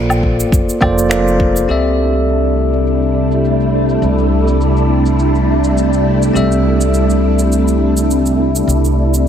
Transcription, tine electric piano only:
0.00 0.77 A#3 medium
0.00 0.78 F4 medium
0.00 0.78 A4 medium
0.00 0.79 C5 medium
0.00 0.79 D5 medium
0.81 1.07 A#3 medium
0.81 1.07 F4 medium
0.81 1.08 A4 medium
0.81 1.08 C5 medium
0.81 1.08 D5 loud
1.09 1.67 A#3 medium
1.09 1.67 F4 medium
1.09 1.67 A4 medium
1.09 1.67 C5 medium
1.09 1.68 D5 medium
1.68 6.31 C4 medium
1.68 6.32 G4 medium
1.68 6.32 A4 medium
1.68 6.32 D5 medium
1.68 6.33 E5 medium
6.33 9.28 C4 medium
6.33 9.28 G4 medium
6.33 9.28 A4 medium
6.33 9.28 D5 medium
6.33 9.28 E5 medium

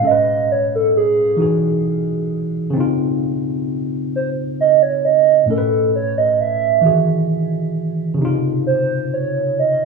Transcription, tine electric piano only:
0.00 1.37 A2 medium
0.00 1.38 G#3 medium
0.00 1.39 C#4 medium
0.05 0.10 A4 medium
0.11 1.43 B4 medium
1.37 2.74 E3 medium
1.37 2.75 D#4 medium
1.37 2.75 F#4 medium
1.42 2.76 G#4 medium
2.70 5.41 C#3 medium
2.70 5.43 C4 medium
2.77 5.44 D#4 medium
2.77 5.46 F4 medium
5.46 6.83 A2 medium
5.46 6.84 A3 medium
5.46 6.85 C#4 medium
5.51 5.55 A#4 medium
5.58 6.89 B4 medium
6.81 8.20 D#3 medium
6.81 8.19 E3 medium
6.81 8.21 F#4 medium
6.86 8.21 G#4 medium
8.14 9.85 C#3 medium
8.18 9.85 C3 medium
8.18 9.85 D#4 medium
8.25 9.85 F4 medium

